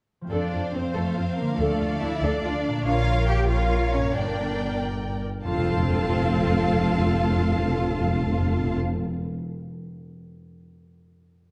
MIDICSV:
0, 0, Header, 1, 8, 480
1, 0, Start_track
1, 0, Key_signature, -1, "major"
1, 0, Tempo, 427350
1, 357, Time_signature, 6, 3, 24, 8
1, 12931, End_track
2, 0, Start_track
2, 0, Title_t, "Violin section"
2, 0, Program_c, 0, 48
2, 352, Note_on_c, 0, 77, 48
2, 3166, Note_off_c, 0, 77, 0
2, 3206, Note_on_c, 0, 77, 64
2, 3882, Note_off_c, 0, 77, 0
2, 3919, Note_on_c, 0, 77, 57
2, 4639, Note_off_c, 0, 77, 0
2, 4656, Note_on_c, 0, 79, 57
2, 5896, Note_off_c, 0, 79, 0
2, 6111, Note_on_c, 0, 81, 67
2, 9841, Note_off_c, 0, 81, 0
2, 12931, End_track
3, 0, Start_track
3, 0, Title_t, "Violin section"
3, 0, Program_c, 1, 48
3, 354, Note_on_c, 1, 74, 55
3, 802, Note_off_c, 1, 74, 0
3, 839, Note_on_c, 1, 72, 46
3, 1078, Note_off_c, 1, 72, 0
3, 1086, Note_on_c, 1, 69, 55
3, 1305, Note_on_c, 1, 72, 56
3, 1320, Note_off_c, 1, 69, 0
3, 1542, Note_on_c, 1, 70, 55
3, 1549, Note_off_c, 1, 72, 0
3, 1782, Note_off_c, 1, 70, 0
3, 1788, Note_on_c, 1, 69, 62
3, 2256, Note_on_c, 1, 76, 68
3, 2264, Note_off_c, 1, 69, 0
3, 2485, Note_on_c, 1, 74, 63
3, 2498, Note_off_c, 1, 76, 0
3, 3190, Note_on_c, 1, 77, 87
3, 3204, Note_off_c, 1, 74, 0
3, 3668, Note_off_c, 1, 77, 0
3, 3687, Note_on_c, 1, 79, 77
3, 3924, Note_on_c, 1, 77, 76
3, 3929, Note_off_c, 1, 79, 0
3, 4402, Note_off_c, 1, 77, 0
3, 4414, Note_on_c, 1, 73, 66
3, 4657, Note_on_c, 1, 74, 64
3, 4659, Note_off_c, 1, 73, 0
3, 5392, Note_off_c, 1, 74, 0
3, 6128, Note_on_c, 1, 77, 73
3, 9849, Note_off_c, 1, 77, 0
3, 12931, End_track
4, 0, Start_track
4, 0, Title_t, "Viola section"
4, 0, Program_c, 2, 48
4, 337, Note_on_c, 2, 69, 52
4, 338, Note_on_c, 2, 72, 46
4, 570, Note_off_c, 2, 69, 0
4, 594, Note_on_c, 2, 65, 36
4, 684, Note_off_c, 2, 65, 0
4, 824, Note_on_c, 2, 60, 34
4, 914, Note_off_c, 2, 60, 0
4, 1052, Note_on_c, 2, 69, 58
4, 1285, Note_off_c, 2, 69, 0
4, 1313, Note_on_c, 2, 65, 46
4, 1403, Note_off_c, 2, 65, 0
4, 1738, Note_off_c, 2, 72, 0
4, 1785, Note_on_c, 2, 69, 51
4, 1785, Note_on_c, 2, 74, 56
4, 2009, Note_off_c, 2, 69, 0
4, 2021, Note_on_c, 2, 65, 48
4, 2110, Note_off_c, 2, 65, 0
4, 2265, Note_on_c, 2, 62, 46
4, 2355, Note_off_c, 2, 62, 0
4, 2482, Note_on_c, 2, 69, 77
4, 2712, Note_off_c, 2, 69, 0
4, 2745, Note_on_c, 2, 65, 56
4, 2835, Note_off_c, 2, 65, 0
4, 3209, Note_off_c, 2, 74, 0
4, 3210, Note_on_c, 2, 70, 68
4, 3212, Note_on_c, 2, 73, 63
4, 3883, Note_off_c, 2, 70, 0
4, 3885, Note_off_c, 2, 73, 0
4, 3937, Note_on_c, 2, 73, 67
4, 3938, Note_on_c, 2, 70, 61
4, 4648, Note_off_c, 2, 73, 0
4, 4649, Note_off_c, 2, 70, 0
4, 4667, Note_on_c, 2, 70, 55
4, 4669, Note_on_c, 2, 74, 55
4, 5877, Note_off_c, 2, 70, 0
4, 5902, Note_off_c, 2, 74, 0
4, 6125, Note_on_c, 2, 69, 69
4, 6134, Note_on_c, 2, 60, 77
4, 9848, Note_off_c, 2, 69, 0
4, 9852, Note_off_c, 2, 60, 0
4, 12931, End_track
5, 0, Start_track
5, 0, Title_t, "Cello section"
5, 0, Program_c, 3, 48
5, 355, Note_on_c, 3, 62, 64
5, 803, Note_off_c, 3, 62, 0
5, 839, Note_on_c, 3, 60, 56
5, 1077, Note_off_c, 3, 60, 0
5, 1079, Note_on_c, 3, 57, 67
5, 1317, Note_off_c, 3, 57, 0
5, 1326, Note_on_c, 3, 60, 61
5, 1555, Note_off_c, 3, 60, 0
5, 1556, Note_on_c, 3, 58, 65
5, 1784, Note_on_c, 3, 57, 73
5, 1794, Note_off_c, 3, 58, 0
5, 2259, Note_on_c, 3, 64, 82
5, 2263, Note_off_c, 3, 57, 0
5, 2498, Note_on_c, 3, 62, 81
5, 2499, Note_off_c, 3, 64, 0
5, 3211, Note_off_c, 3, 62, 0
5, 3221, Note_on_c, 3, 65, 95
5, 3690, Note_on_c, 3, 67, 95
5, 3694, Note_off_c, 3, 65, 0
5, 3922, Note_on_c, 3, 65, 98
5, 3926, Note_off_c, 3, 67, 0
5, 4401, Note_off_c, 3, 65, 0
5, 4413, Note_on_c, 3, 61, 81
5, 4659, Note_off_c, 3, 61, 0
5, 4660, Note_on_c, 3, 62, 67
5, 5393, Note_off_c, 3, 62, 0
5, 6119, Note_on_c, 3, 65, 80
5, 9845, Note_off_c, 3, 65, 0
5, 12931, End_track
6, 0, Start_track
6, 0, Title_t, "Harp"
6, 0, Program_c, 4, 46
6, 240, Note_on_c, 4, 53, 40
6, 256, Note_on_c, 4, 57, 35
6, 272, Note_on_c, 4, 60, 32
6, 302, Note_on_c, 4, 65, 33
6, 1584, Note_on_c, 4, 50, 47
6, 1619, Note_off_c, 4, 57, 0
6, 1633, Note_on_c, 4, 57, 42
6, 1685, Note_on_c, 4, 62, 41
6, 1718, Note_off_c, 4, 65, 0
6, 1731, Note_on_c, 4, 65, 42
6, 1763, Note_off_c, 4, 60, 0
6, 3013, Note_on_c, 4, 46, 59
6, 3065, Note_on_c, 4, 58, 50
6, 3114, Note_on_c, 4, 61, 48
6, 3128, Note_off_c, 4, 50, 0
6, 3152, Note_off_c, 4, 57, 0
6, 3154, Note_off_c, 4, 65, 0
6, 3167, Note_on_c, 4, 65, 49
6, 3178, Note_off_c, 4, 62, 0
6, 4471, Note_on_c, 4, 43, 49
6, 4504, Note_off_c, 4, 58, 0
6, 4518, Note_on_c, 4, 58, 43
6, 4570, Note_on_c, 4, 62, 42
6, 4579, Note_off_c, 4, 46, 0
6, 4620, Note_on_c, 4, 67, 42
6, 4621, Note_off_c, 4, 53, 0
6, 4629, Note_off_c, 4, 61, 0
6, 4656, Note_off_c, 4, 65, 0
6, 6052, Note_off_c, 4, 43, 0
6, 6075, Note_off_c, 4, 58, 0
6, 6101, Note_off_c, 4, 62, 0
6, 6127, Note_off_c, 4, 67, 0
6, 6130, Note_on_c, 4, 41, 57
6, 6211, Note_on_c, 4, 53, 55
6, 6283, Note_on_c, 4, 60, 56
6, 6365, Note_on_c, 4, 65, 58
6, 6441, Note_on_c, 4, 69, 59
6, 6524, Note_on_c, 4, 77, 56
6, 10101, Note_off_c, 4, 60, 0
6, 10183, Note_off_c, 4, 65, 0
6, 10259, Note_off_c, 4, 69, 0
6, 10341, Note_off_c, 4, 77, 0
6, 10506, Note_off_c, 4, 53, 0
6, 10510, Note_off_c, 4, 41, 0
6, 12931, End_track
7, 0, Start_track
7, 0, Title_t, "Timpani"
7, 0, Program_c, 5, 47
7, 339, Note_on_c, 5, 41, 52
7, 1023, Note_off_c, 5, 41, 0
7, 6120, Note_on_c, 5, 41, 79
7, 6188, Note_off_c, 5, 41, 0
7, 6188, Note_on_c, 5, 41, 65
7, 6260, Note_off_c, 5, 41, 0
7, 6265, Note_on_c, 5, 41, 75
7, 6336, Note_off_c, 5, 41, 0
7, 6336, Note_on_c, 5, 41, 67
7, 6408, Note_off_c, 5, 41, 0
7, 6409, Note_on_c, 5, 41, 71
7, 6478, Note_off_c, 5, 41, 0
7, 6478, Note_on_c, 5, 41, 73
7, 6546, Note_off_c, 5, 41, 0
7, 6546, Note_on_c, 5, 41, 72
7, 6618, Note_off_c, 5, 41, 0
7, 6619, Note_on_c, 5, 41, 66
7, 6691, Note_off_c, 5, 41, 0
7, 6692, Note_on_c, 5, 41, 71
7, 6764, Note_off_c, 5, 41, 0
7, 6766, Note_on_c, 5, 41, 68
7, 6837, Note_off_c, 5, 41, 0
7, 6841, Note_on_c, 5, 41, 71
7, 6910, Note_off_c, 5, 41, 0
7, 6910, Note_on_c, 5, 41, 67
7, 6979, Note_off_c, 5, 41, 0
7, 6979, Note_on_c, 5, 41, 70
7, 7051, Note_off_c, 5, 41, 0
7, 7052, Note_on_c, 5, 41, 66
7, 7122, Note_off_c, 5, 41, 0
7, 7122, Note_on_c, 5, 41, 65
7, 7191, Note_off_c, 5, 41, 0
7, 7191, Note_on_c, 5, 41, 64
7, 7262, Note_off_c, 5, 41, 0
7, 7265, Note_on_c, 5, 41, 75
7, 7334, Note_off_c, 5, 41, 0
7, 7334, Note_on_c, 5, 41, 68
7, 7406, Note_off_c, 5, 41, 0
7, 7416, Note_on_c, 5, 41, 78
7, 7487, Note_off_c, 5, 41, 0
7, 7489, Note_on_c, 5, 41, 66
7, 7558, Note_off_c, 5, 41, 0
7, 7558, Note_on_c, 5, 41, 68
7, 7629, Note_off_c, 5, 41, 0
7, 7631, Note_on_c, 5, 41, 67
7, 7703, Note_off_c, 5, 41, 0
7, 7705, Note_on_c, 5, 41, 80
7, 7770, Note_off_c, 5, 41, 0
7, 7770, Note_on_c, 5, 41, 71
7, 7841, Note_off_c, 5, 41, 0
7, 7844, Note_on_c, 5, 41, 78
7, 7915, Note_off_c, 5, 41, 0
7, 7920, Note_on_c, 5, 41, 73
7, 7991, Note_off_c, 5, 41, 0
7, 7991, Note_on_c, 5, 41, 75
7, 8060, Note_off_c, 5, 41, 0
7, 8060, Note_on_c, 5, 41, 72
7, 8130, Note_off_c, 5, 41, 0
7, 8130, Note_on_c, 5, 41, 71
7, 8201, Note_off_c, 5, 41, 0
7, 8207, Note_on_c, 5, 41, 65
7, 8272, Note_off_c, 5, 41, 0
7, 8272, Note_on_c, 5, 41, 70
7, 8342, Note_off_c, 5, 41, 0
7, 8342, Note_on_c, 5, 41, 69
7, 8414, Note_off_c, 5, 41, 0
7, 8423, Note_on_c, 5, 41, 72
7, 8494, Note_off_c, 5, 41, 0
7, 8496, Note_on_c, 5, 41, 70
7, 8568, Note_off_c, 5, 41, 0
7, 8568, Note_on_c, 5, 41, 70
7, 8639, Note_off_c, 5, 41, 0
7, 8641, Note_on_c, 5, 41, 65
7, 8713, Note_off_c, 5, 41, 0
7, 8716, Note_on_c, 5, 41, 69
7, 8784, Note_off_c, 5, 41, 0
7, 8784, Note_on_c, 5, 41, 65
7, 8854, Note_off_c, 5, 41, 0
7, 8854, Note_on_c, 5, 41, 73
7, 8925, Note_off_c, 5, 41, 0
7, 8925, Note_on_c, 5, 41, 68
7, 8997, Note_off_c, 5, 41, 0
7, 8997, Note_on_c, 5, 41, 79
7, 9069, Note_off_c, 5, 41, 0
7, 9071, Note_on_c, 5, 41, 68
7, 9142, Note_off_c, 5, 41, 0
7, 9142, Note_on_c, 5, 41, 70
7, 9211, Note_off_c, 5, 41, 0
7, 9211, Note_on_c, 5, 41, 68
7, 9283, Note_off_c, 5, 41, 0
7, 9285, Note_on_c, 5, 41, 71
7, 9350, Note_off_c, 5, 41, 0
7, 9350, Note_on_c, 5, 41, 66
7, 9422, Note_off_c, 5, 41, 0
7, 9425, Note_on_c, 5, 41, 71
7, 9494, Note_off_c, 5, 41, 0
7, 9494, Note_on_c, 5, 41, 71
7, 9565, Note_off_c, 5, 41, 0
7, 9569, Note_on_c, 5, 41, 72
7, 9639, Note_off_c, 5, 41, 0
7, 9639, Note_on_c, 5, 41, 73
7, 9705, Note_off_c, 5, 41, 0
7, 9705, Note_on_c, 5, 41, 74
7, 9776, Note_off_c, 5, 41, 0
7, 9778, Note_on_c, 5, 41, 68
7, 9849, Note_off_c, 5, 41, 0
7, 9854, Note_on_c, 5, 41, 68
7, 9926, Note_off_c, 5, 41, 0
7, 12931, End_track
8, 0, Start_track
8, 0, Title_t, "Double bass section"
8, 0, Program_c, 6, 48
8, 348, Note_on_c, 6, 41, 53
8, 438, Note_off_c, 6, 41, 0
8, 592, Note_on_c, 6, 41, 36
8, 682, Note_off_c, 6, 41, 0
8, 827, Note_on_c, 6, 41, 38
8, 917, Note_off_c, 6, 41, 0
8, 1073, Note_on_c, 6, 41, 53
8, 1162, Note_off_c, 6, 41, 0
8, 1314, Note_on_c, 6, 41, 42
8, 1404, Note_off_c, 6, 41, 0
8, 1788, Note_on_c, 6, 38, 65
8, 1878, Note_off_c, 6, 38, 0
8, 2027, Note_on_c, 6, 38, 52
8, 2117, Note_off_c, 6, 38, 0
8, 2267, Note_on_c, 6, 38, 49
8, 2357, Note_off_c, 6, 38, 0
8, 2497, Note_on_c, 6, 38, 72
8, 2587, Note_off_c, 6, 38, 0
8, 2729, Note_on_c, 6, 38, 55
8, 2819, Note_off_c, 6, 38, 0
8, 3204, Note_on_c, 6, 34, 67
8, 4610, Note_off_c, 6, 34, 0
8, 4648, Note_on_c, 6, 31, 55
8, 5867, Note_off_c, 6, 31, 0
8, 6124, Note_on_c, 6, 29, 71
8, 9847, Note_off_c, 6, 29, 0
8, 12931, End_track
0, 0, End_of_file